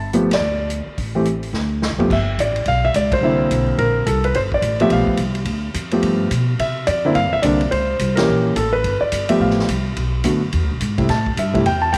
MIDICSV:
0, 0, Header, 1, 5, 480
1, 0, Start_track
1, 0, Tempo, 280899
1, 1659, Time_signature, 4, 2, 24, 8
1, 20468, End_track
2, 0, Start_track
2, 0, Title_t, "Grand piano"
2, 0, Program_c, 0, 0
2, 0, Note_on_c, 0, 81, 83
2, 194, Note_off_c, 0, 81, 0
2, 229, Note_on_c, 0, 53, 63
2, 231, Note_on_c, 0, 57, 54
2, 235, Note_on_c, 0, 59, 61
2, 242, Note_on_c, 0, 67, 62
2, 489, Note_off_c, 0, 53, 0
2, 490, Note_off_c, 0, 57, 0
2, 491, Note_off_c, 0, 59, 0
2, 495, Note_off_c, 0, 67, 0
2, 577, Note_on_c, 0, 74, 82
2, 1166, Note_off_c, 0, 74, 0
2, 1967, Note_on_c, 0, 52, 59
2, 1979, Note_on_c, 0, 57, 53
2, 1982, Note_on_c, 0, 60, 52
2, 1989, Note_on_c, 0, 67, 62
2, 2127, Note_off_c, 0, 52, 0
2, 2133, Note_off_c, 0, 57, 0
2, 2135, Note_off_c, 0, 60, 0
2, 2138, Note_off_c, 0, 67, 0
2, 3391, Note_on_c, 0, 53, 59
2, 3404, Note_on_c, 0, 57, 54
2, 3409, Note_on_c, 0, 59, 53
2, 3414, Note_on_c, 0, 67, 62
2, 3560, Note_off_c, 0, 53, 0
2, 3566, Note_off_c, 0, 57, 0
2, 3569, Note_off_c, 0, 59, 0
2, 3571, Note_off_c, 0, 67, 0
2, 3631, Note_on_c, 0, 76, 86
2, 4054, Note_off_c, 0, 76, 0
2, 4106, Note_on_c, 0, 74, 75
2, 4578, Note_off_c, 0, 74, 0
2, 4582, Note_on_c, 0, 77, 96
2, 4863, Note_on_c, 0, 76, 94
2, 4864, Note_off_c, 0, 77, 0
2, 5023, Note_off_c, 0, 76, 0
2, 5055, Note_on_c, 0, 74, 84
2, 5341, Note_off_c, 0, 74, 0
2, 5353, Note_on_c, 0, 72, 79
2, 5512, Note_on_c, 0, 50, 59
2, 5523, Note_on_c, 0, 58, 48
2, 5526, Note_on_c, 0, 60, 55
2, 5532, Note_on_c, 0, 64, 69
2, 6468, Note_on_c, 0, 70, 82
2, 6515, Note_off_c, 0, 72, 0
2, 6837, Note_off_c, 0, 50, 0
2, 6842, Note_off_c, 0, 58, 0
2, 6844, Note_off_c, 0, 60, 0
2, 6847, Note_off_c, 0, 64, 0
2, 6912, Note_off_c, 0, 70, 0
2, 6946, Note_on_c, 0, 69, 77
2, 7248, Note_off_c, 0, 69, 0
2, 7256, Note_on_c, 0, 71, 80
2, 7438, Note_off_c, 0, 71, 0
2, 7440, Note_on_c, 0, 72, 83
2, 7526, Note_off_c, 0, 72, 0
2, 7762, Note_on_c, 0, 74, 78
2, 8188, Note_off_c, 0, 74, 0
2, 8206, Note_on_c, 0, 53, 70
2, 8213, Note_on_c, 0, 57, 64
2, 8217, Note_on_c, 0, 59, 62
2, 8220, Note_on_c, 0, 67, 81
2, 8229, Note_on_c, 0, 76, 88
2, 8404, Note_off_c, 0, 76, 0
2, 8416, Note_on_c, 0, 77, 85
2, 8831, Note_off_c, 0, 53, 0
2, 8834, Note_off_c, 0, 57, 0
2, 8837, Note_off_c, 0, 59, 0
2, 8838, Note_off_c, 0, 67, 0
2, 8848, Note_off_c, 0, 77, 0
2, 10118, Note_on_c, 0, 53, 58
2, 10124, Note_on_c, 0, 57, 56
2, 10133, Note_on_c, 0, 59, 49
2, 10136, Note_on_c, 0, 67, 62
2, 10747, Note_off_c, 0, 53, 0
2, 10751, Note_off_c, 0, 57, 0
2, 10755, Note_off_c, 0, 59, 0
2, 10757, Note_off_c, 0, 67, 0
2, 11277, Note_on_c, 0, 76, 89
2, 11718, Note_off_c, 0, 76, 0
2, 11738, Note_on_c, 0, 74, 81
2, 12041, Note_on_c, 0, 50, 63
2, 12054, Note_on_c, 0, 58, 60
2, 12060, Note_on_c, 0, 60, 66
2, 12063, Note_on_c, 0, 64, 79
2, 12188, Note_off_c, 0, 74, 0
2, 12208, Note_off_c, 0, 50, 0
2, 12215, Note_off_c, 0, 58, 0
2, 12217, Note_off_c, 0, 60, 0
2, 12219, Note_off_c, 0, 64, 0
2, 12220, Note_on_c, 0, 77, 96
2, 12523, Note_on_c, 0, 76, 92
2, 12527, Note_off_c, 0, 77, 0
2, 12687, Note_on_c, 0, 74, 79
2, 12699, Note_on_c, 0, 50, 58
2, 12707, Note_on_c, 0, 58, 56
2, 12713, Note_off_c, 0, 76, 0
2, 12716, Note_on_c, 0, 60, 53
2, 12719, Note_on_c, 0, 62, 64
2, 12968, Note_off_c, 0, 50, 0
2, 12972, Note_off_c, 0, 58, 0
2, 12976, Note_off_c, 0, 60, 0
2, 12977, Note_off_c, 0, 62, 0
2, 13142, Note_off_c, 0, 74, 0
2, 13177, Note_on_c, 0, 72, 81
2, 13902, Note_off_c, 0, 72, 0
2, 13935, Note_on_c, 0, 70, 78
2, 13962, Note_on_c, 0, 52, 61
2, 13969, Note_on_c, 0, 58, 55
2, 13972, Note_on_c, 0, 61, 56
2, 13973, Note_on_c, 0, 67, 70
2, 14566, Note_off_c, 0, 70, 0
2, 14590, Note_off_c, 0, 52, 0
2, 14594, Note_off_c, 0, 58, 0
2, 14595, Note_off_c, 0, 61, 0
2, 14595, Note_off_c, 0, 67, 0
2, 14635, Note_on_c, 0, 69, 75
2, 14905, Note_off_c, 0, 69, 0
2, 14911, Note_on_c, 0, 71, 81
2, 15391, Note_on_c, 0, 74, 76
2, 15410, Note_off_c, 0, 71, 0
2, 15877, Note_on_c, 0, 76, 84
2, 15881, Note_on_c, 0, 53, 60
2, 15883, Note_on_c, 0, 57, 58
2, 15885, Note_on_c, 0, 59, 57
2, 15890, Note_off_c, 0, 74, 0
2, 15892, Note_on_c, 0, 67, 73
2, 16070, Note_off_c, 0, 76, 0
2, 16086, Note_on_c, 0, 77, 73
2, 16509, Note_off_c, 0, 53, 0
2, 16510, Note_off_c, 0, 57, 0
2, 16511, Note_off_c, 0, 59, 0
2, 16515, Note_off_c, 0, 67, 0
2, 16523, Note_off_c, 0, 77, 0
2, 17496, Note_on_c, 0, 50, 51
2, 17503, Note_on_c, 0, 57, 47
2, 17505, Note_on_c, 0, 59, 46
2, 17515, Note_on_c, 0, 66, 55
2, 17765, Note_off_c, 0, 50, 0
2, 17768, Note_off_c, 0, 57, 0
2, 17770, Note_off_c, 0, 59, 0
2, 17775, Note_off_c, 0, 66, 0
2, 18760, Note_on_c, 0, 48, 53
2, 18768, Note_on_c, 0, 55, 47
2, 18770, Note_on_c, 0, 57, 47
2, 18775, Note_on_c, 0, 64, 58
2, 18926, Note_off_c, 0, 48, 0
2, 18930, Note_off_c, 0, 55, 0
2, 18931, Note_off_c, 0, 57, 0
2, 18933, Note_off_c, 0, 64, 0
2, 18964, Note_on_c, 0, 81, 73
2, 19447, Note_off_c, 0, 81, 0
2, 19460, Note_on_c, 0, 76, 66
2, 19712, Note_on_c, 0, 48, 56
2, 19722, Note_on_c, 0, 57, 58
2, 19726, Note_on_c, 0, 55, 61
2, 19734, Note_on_c, 0, 64, 69
2, 19881, Note_off_c, 0, 48, 0
2, 19886, Note_off_c, 0, 57, 0
2, 19888, Note_off_c, 0, 55, 0
2, 19892, Note_off_c, 0, 64, 0
2, 19928, Note_on_c, 0, 79, 89
2, 19934, Note_off_c, 0, 76, 0
2, 20189, Note_off_c, 0, 79, 0
2, 20192, Note_on_c, 0, 81, 87
2, 20365, Note_off_c, 0, 81, 0
2, 20380, Note_on_c, 0, 79, 83
2, 20468, Note_off_c, 0, 79, 0
2, 20468, End_track
3, 0, Start_track
3, 0, Title_t, "Upright bass"
3, 0, Program_c, 1, 32
3, 0, Note_on_c, 1, 31, 69
3, 646, Note_off_c, 1, 31, 0
3, 695, Note_on_c, 1, 38, 78
3, 1417, Note_off_c, 1, 38, 0
3, 1674, Note_on_c, 1, 33, 68
3, 2579, Note_off_c, 1, 33, 0
3, 2611, Note_on_c, 1, 38, 74
3, 3211, Note_off_c, 1, 38, 0
3, 3244, Note_on_c, 1, 36, 57
3, 3378, Note_off_c, 1, 36, 0
3, 3389, Note_on_c, 1, 30, 58
3, 3552, Note_off_c, 1, 30, 0
3, 3592, Note_on_c, 1, 31, 70
3, 4052, Note_off_c, 1, 31, 0
3, 4071, Note_on_c, 1, 33, 77
3, 4532, Note_off_c, 1, 33, 0
3, 4546, Note_on_c, 1, 35, 79
3, 5009, Note_off_c, 1, 35, 0
3, 5029, Note_on_c, 1, 37, 81
3, 5475, Note_off_c, 1, 37, 0
3, 5485, Note_on_c, 1, 36, 73
3, 5959, Note_off_c, 1, 36, 0
3, 5990, Note_on_c, 1, 35, 72
3, 6452, Note_off_c, 1, 35, 0
3, 6463, Note_on_c, 1, 34, 77
3, 6929, Note_off_c, 1, 34, 0
3, 6945, Note_on_c, 1, 36, 84
3, 7410, Note_off_c, 1, 36, 0
3, 7425, Note_on_c, 1, 31, 74
3, 7881, Note_off_c, 1, 31, 0
3, 7891, Note_on_c, 1, 33, 77
3, 8358, Note_off_c, 1, 33, 0
3, 8369, Note_on_c, 1, 35, 78
3, 8650, Note_off_c, 1, 35, 0
3, 8848, Note_on_c, 1, 36, 80
3, 9309, Note_off_c, 1, 36, 0
3, 9319, Note_on_c, 1, 38, 71
3, 9797, Note_off_c, 1, 38, 0
3, 9810, Note_on_c, 1, 41, 68
3, 10279, Note_off_c, 1, 41, 0
3, 10289, Note_on_c, 1, 43, 69
3, 10763, Note_off_c, 1, 43, 0
3, 10774, Note_on_c, 1, 47, 82
3, 11246, Note_off_c, 1, 47, 0
3, 11264, Note_on_c, 1, 48, 69
3, 11731, Note_off_c, 1, 48, 0
3, 11740, Note_on_c, 1, 41, 75
3, 12209, Note_off_c, 1, 41, 0
3, 12221, Note_on_c, 1, 43, 70
3, 12385, Note_off_c, 1, 43, 0
3, 12385, Note_on_c, 1, 40, 48
3, 12526, Note_off_c, 1, 40, 0
3, 12536, Note_on_c, 1, 36, 55
3, 12690, Note_off_c, 1, 36, 0
3, 12700, Note_on_c, 1, 36, 79
3, 13169, Note_off_c, 1, 36, 0
3, 13182, Note_on_c, 1, 37, 67
3, 13650, Note_off_c, 1, 37, 0
3, 13662, Note_on_c, 1, 36, 78
3, 14130, Note_off_c, 1, 36, 0
3, 14151, Note_on_c, 1, 34, 73
3, 14609, Note_off_c, 1, 34, 0
3, 14620, Note_on_c, 1, 33, 83
3, 15089, Note_off_c, 1, 33, 0
3, 15107, Note_on_c, 1, 31, 72
3, 15381, Note_off_c, 1, 31, 0
3, 15587, Note_on_c, 1, 31, 73
3, 16052, Note_off_c, 1, 31, 0
3, 16069, Note_on_c, 1, 33, 78
3, 16533, Note_off_c, 1, 33, 0
3, 16549, Note_on_c, 1, 36, 77
3, 17013, Note_off_c, 1, 36, 0
3, 17030, Note_on_c, 1, 35, 70
3, 17493, Note_off_c, 1, 35, 0
3, 17501, Note_on_c, 1, 42, 69
3, 17968, Note_off_c, 1, 42, 0
3, 17997, Note_on_c, 1, 40, 78
3, 18165, Note_off_c, 1, 40, 0
3, 18165, Note_on_c, 1, 38, 48
3, 18290, Note_off_c, 1, 38, 0
3, 18300, Note_on_c, 1, 35, 53
3, 18451, Note_off_c, 1, 35, 0
3, 18463, Note_on_c, 1, 44, 80
3, 18928, Note_off_c, 1, 44, 0
3, 18953, Note_on_c, 1, 45, 77
3, 19413, Note_off_c, 1, 45, 0
3, 19423, Note_on_c, 1, 43, 76
3, 19887, Note_off_c, 1, 43, 0
3, 19912, Note_on_c, 1, 40, 75
3, 20371, Note_off_c, 1, 40, 0
3, 20391, Note_on_c, 1, 36, 86
3, 20468, Note_off_c, 1, 36, 0
3, 20468, End_track
4, 0, Start_track
4, 0, Title_t, "Muted upright bass strokes"
4, 1475, Note_on_c, 9, 29, 34
4, 1646, Note_off_c, 9, 29, 0
4, 8667, Note_on_c, 9, 29, 35
4, 8838, Note_off_c, 9, 29, 0
4, 15400, Note_on_c, 9, 29, 38
4, 15571, Note_off_c, 9, 29, 0
4, 20468, End_track
5, 0, Start_track
5, 0, Title_t, "Drums"
5, 225, Note_on_c, 9, 42, 46
5, 396, Note_off_c, 9, 42, 0
5, 532, Note_on_c, 9, 51, 65
5, 537, Note_on_c, 9, 38, 72
5, 703, Note_off_c, 9, 51, 0
5, 708, Note_off_c, 9, 38, 0
5, 1194, Note_on_c, 9, 42, 51
5, 1365, Note_off_c, 9, 42, 0
5, 1671, Note_on_c, 9, 36, 29
5, 1671, Note_on_c, 9, 46, 43
5, 1841, Note_off_c, 9, 46, 0
5, 1842, Note_off_c, 9, 36, 0
5, 2143, Note_on_c, 9, 42, 44
5, 2314, Note_off_c, 9, 42, 0
5, 2439, Note_on_c, 9, 46, 34
5, 2610, Note_off_c, 9, 46, 0
5, 2624, Note_on_c, 9, 38, 45
5, 2795, Note_off_c, 9, 38, 0
5, 3113, Note_on_c, 9, 38, 65
5, 3284, Note_off_c, 9, 38, 0
5, 3413, Note_on_c, 9, 43, 65
5, 3584, Note_off_c, 9, 43, 0
5, 3593, Note_on_c, 9, 36, 63
5, 3599, Note_on_c, 9, 49, 59
5, 3764, Note_off_c, 9, 36, 0
5, 3770, Note_off_c, 9, 49, 0
5, 4072, Note_on_c, 9, 36, 22
5, 4079, Note_on_c, 9, 44, 54
5, 4079, Note_on_c, 9, 51, 61
5, 4243, Note_off_c, 9, 36, 0
5, 4250, Note_off_c, 9, 44, 0
5, 4250, Note_off_c, 9, 51, 0
5, 4370, Note_on_c, 9, 51, 42
5, 4537, Note_off_c, 9, 51, 0
5, 4537, Note_on_c, 9, 51, 50
5, 4547, Note_on_c, 9, 36, 19
5, 4708, Note_off_c, 9, 51, 0
5, 4718, Note_off_c, 9, 36, 0
5, 5028, Note_on_c, 9, 44, 57
5, 5028, Note_on_c, 9, 51, 57
5, 5031, Note_on_c, 9, 36, 17
5, 5199, Note_off_c, 9, 44, 0
5, 5199, Note_off_c, 9, 51, 0
5, 5202, Note_off_c, 9, 36, 0
5, 5326, Note_on_c, 9, 36, 77
5, 5329, Note_on_c, 9, 51, 68
5, 5497, Note_off_c, 9, 36, 0
5, 5500, Note_off_c, 9, 51, 0
5, 5992, Note_on_c, 9, 36, 19
5, 5994, Note_on_c, 9, 44, 50
5, 5994, Note_on_c, 9, 51, 55
5, 6163, Note_off_c, 9, 36, 0
5, 6165, Note_off_c, 9, 44, 0
5, 6165, Note_off_c, 9, 51, 0
5, 6467, Note_on_c, 9, 51, 47
5, 6472, Note_on_c, 9, 36, 21
5, 6638, Note_off_c, 9, 51, 0
5, 6642, Note_off_c, 9, 36, 0
5, 6947, Note_on_c, 9, 44, 52
5, 6947, Note_on_c, 9, 51, 56
5, 6952, Note_on_c, 9, 36, 22
5, 7118, Note_off_c, 9, 44, 0
5, 7118, Note_off_c, 9, 51, 0
5, 7122, Note_off_c, 9, 36, 0
5, 7244, Note_on_c, 9, 51, 40
5, 7415, Note_off_c, 9, 51, 0
5, 7424, Note_on_c, 9, 51, 51
5, 7426, Note_on_c, 9, 36, 20
5, 7594, Note_off_c, 9, 51, 0
5, 7597, Note_off_c, 9, 36, 0
5, 7719, Note_on_c, 9, 36, 51
5, 7890, Note_off_c, 9, 36, 0
5, 7899, Note_on_c, 9, 44, 55
5, 7899, Note_on_c, 9, 51, 53
5, 7900, Note_on_c, 9, 36, 17
5, 8070, Note_off_c, 9, 44, 0
5, 8070, Note_off_c, 9, 51, 0
5, 8071, Note_off_c, 9, 36, 0
5, 8198, Note_on_c, 9, 51, 44
5, 8369, Note_off_c, 9, 51, 0
5, 8374, Note_on_c, 9, 51, 54
5, 8377, Note_on_c, 9, 36, 23
5, 8545, Note_off_c, 9, 51, 0
5, 8548, Note_off_c, 9, 36, 0
5, 8668, Note_on_c, 9, 36, 43
5, 8839, Note_off_c, 9, 36, 0
5, 8839, Note_on_c, 9, 44, 47
5, 8839, Note_on_c, 9, 51, 58
5, 8852, Note_on_c, 9, 36, 19
5, 9010, Note_off_c, 9, 44, 0
5, 9010, Note_off_c, 9, 51, 0
5, 9023, Note_off_c, 9, 36, 0
5, 9138, Note_on_c, 9, 51, 42
5, 9309, Note_off_c, 9, 51, 0
5, 9320, Note_on_c, 9, 51, 53
5, 9329, Note_on_c, 9, 36, 19
5, 9491, Note_off_c, 9, 51, 0
5, 9500, Note_off_c, 9, 36, 0
5, 9814, Note_on_c, 9, 44, 55
5, 9814, Note_on_c, 9, 51, 57
5, 9815, Note_on_c, 9, 36, 24
5, 9985, Note_off_c, 9, 44, 0
5, 9985, Note_off_c, 9, 51, 0
5, 9986, Note_off_c, 9, 36, 0
5, 10105, Note_on_c, 9, 51, 45
5, 10276, Note_off_c, 9, 51, 0
5, 10297, Note_on_c, 9, 36, 18
5, 10297, Note_on_c, 9, 51, 58
5, 10468, Note_off_c, 9, 36, 0
5, 10468, Note_off_c, 9, 51, 0
5, 10780, Note_on_c, 9, 44, 48
5, 10780, Note_on_c, 9, 51, 58
5, 10781, Note_on_c, 9, 36, 18
5, 10951, Note_off_c, 9, 44, 0
5, 10951, Note_off_c, 9, 51, 0
5, 10952, Note_off_c, 9, 36, 0
5, 11265, Note_on_c, 9, 36, 23
5, 11267, Note_on_c, 9, 51, 54
5, 11436, Note_off_c, 9, 36, 0
5, 11438, Note_off_c, 9, 51, 0
5, 11737, Note_on_c, 9, 44, 49
5, 11737, Note_on_c, 9, 51, 62
5, 11743, Note_on_c, 9, 36, 16
5, 11908, Note_off_c, 9, 44, 0
5, 11908, Note_off_c, 9, 51, 0
5, 11914, Note_off_c, 9, 36, 0
5, 12217, Note_on_c, 9, 51, 49
5, 12224, Note_on_c, 9, 36, 23
5, 12388, Note_off_c, 9, 51, 0
5, 12395, Note_off_c, 9, 36, 0
5, 12692, Note_on_c, 9, 44, 51
5, 12692, Note_on_c, 9, 51, 65
5, 12705, Note_on_c, 9, 36, 23
5, 12863, Note_off_c, 9, 44, 0
5, 12863, Note_off_c, 9, 51, 0
5, 12875, Note_off_c, 9, 36, 0
5, 12997, Note_on_c, 9, 51, 41
5, 13168, Note_off_c, 9, 51, 0
5, 13188, Note_on_c, 9, 36, 22
5, 13189, Note_on_c, 9, 51, 55
5, 13359, Note_off_c, 9, 36, 0
5, 13360, Note_off_c, 9, 51, 0
5, 13660, Note_on_c, 9, 44, 54
5, 13660, Note_on_c, 9, 51, 62
5, 13663, Note_on_c, 9, 36, 18
5, 13831, Note_off_c, 9, 44, 0
5, 13831, Note_off_c, 9, 51, 0
5, 13833, Note_off_c, 9, 36, 0
5, 13960, Note_on_c, 9, 51, 59
5, 13965, Note_on_c, 9, 38, 72
5, 14131, Note_off_c, 9, 51, 0
5, 14136, Note_off_c, 9, 38, 0
5, 14624, Note_on_c, 9, 36, 18
5, 14627, Note_on_c, 9, 44, 52
5, 14627, Note_on_c, 9, 51, 66
5, 14795, Note_off_c, 9, 36, 0
5, 14798, Note_off_c, 9, 44, 0
5, 14798, Note_off_c, 9, 51, 0
5, 15106, Note_on_c, 9, 36, 18
5, 15107, Note_on_c, 9, 51, 55
5, 15277, Note_off_c, 9, 36, 0
5, 15278, Note_off_c, 9, 51, 0
5, 15580, Note_on_c, 9, 44, 57
5, 15580, Note_on_c, 9, 51, 66
5, 15584, Note_on_c, 9, 36, 17
5, 15751, Note_off_c, 9, 44, 0
5, 15751, Note_off_c, 9, 51, 0
5, 15755, Note_off_c, 9, 36, 0
5, 15872, Note_on_c, 9, 51, 59
5, 16043, Note_off_c, 9, 51, 0
5, 16067, Note_on_c, 9, 36, 23
5, 16234, Note_on_c, 9, 38, 24
5, 16238, Note_off_c, 9, 36, 0
5, 16393, Note_off_c, 9, 38, 0
5, 16393, Note_on_c, 9, 38, 41
5, 16551, Note_on_c, 9, 44, 51
5, 16551, Note_on_c, 9, 51, 65
5, 16552, Note_on_c, 9, 36, 24
5, 16564, Note_off_c, 9, 38, 0
5, 16722, Note_off_c, 9, 44, 0
5, 16722, Note_off_c, 9, 51, 0
5, 16723, Note_off_c, 9, 36, 0
5, 17029, Note_on_c, 9, 51, 57
5, 17030, Note_on_c, 9, 36, 17
5, 17200, Note_off_c, 9, 51, 0
5, 17201, Note_off_c, 9, 36, 0
5, 17493, Note_on_c, 9, 44, 53
5, 17493, Note_on_c, 9, 51, 59
5, 17508, Note_on_c, 9, 36, 16
5, 17664, Note_off_c, 9, 44, 0
5, 17664, Note_off_c, 9, 51, 0
5, 17678, Note_off_c, 9, 36, 0
5, 17985, Note_on_c, 9, 51, 54
5, 17994, Note_on_c, 9, 36, 23
5, 18156, Note_off_c, 9, 51, 0
5, 18165, Note_off_c, 9, 36, 0
5, 18465, Note_on_c, 9, 44, 58
5, 18465, Note_on_c, 9, 51, 54
5, 18472, Note_on_c, 9, 36, 23
5, 18636, Note_off_c, 9, 44, 0
5, 18636, Note_off_c, 9, 51, 0
5, 18643, Note_off_c, 9, 36, 0
5, 18764, Note_on_c, 9, 51, 45
5, 18768, Note_on_c, 9, 36, 50
5, 18935, Note_off_c, 9, 51, 0
5, 18938, Note_off_c, 9, 36, 0
5, 18947, Note_on_c, 9, 51, 53
5, 18951, Note_on_c, 9, 36, 23
5, 18952, Note_on_c, 9, 38, 36
5, 19118, Note_off_c, 9, 51, 0
5, 19122, Note_off_c, 9, 36, 0
5, 19123, Note_off_c, 9, 38, 0
5, 19247, Note_on_c, 9, 36, 51
5, 19418, Note_off_c, 9, 36, 0
5, 19432, Note_on_c, 9, 44, 53
5, 19432, Note_on_c, 9, 51, 60
5, 19435, Note_on_c, 9, 36, 19
5, 19603, Note_off_c, 9, 44, 0
5, 19603, Note_off_c, 9, 51, 0
5, 19606, Note_off_c, 9, 36, 0
5, 19730, Note_on_c, 9, 36, 45
5, 19734, Note_on_c, 9, 51, 39
5, 19901, Note_off_c, 9, 36, 0
5, 19905, Note_off_c, 9, 51, 0
5, 19918, Note_on_c, 9, 36, 21
5, 19918, Note_on_c, 9, 51, 58
5, 20089, Note_off_c, 9, 36, 0
5, 20089, Note_off_c, 9, 51, 0
5, 20393, Note_on_c, 9, 36, 18
5, 20396, Note_on_c, 9, 44, 63
5, 20396, Note_on_c, 9, 51, 70
5, 20468, Note_off_c, 9, 36, 0
5, 20468, Note_off_c, 9, 44, 0
5, 20468, Note_off_c, 9, 51, 0
5, 20468, End_track
0, 0, End_of_file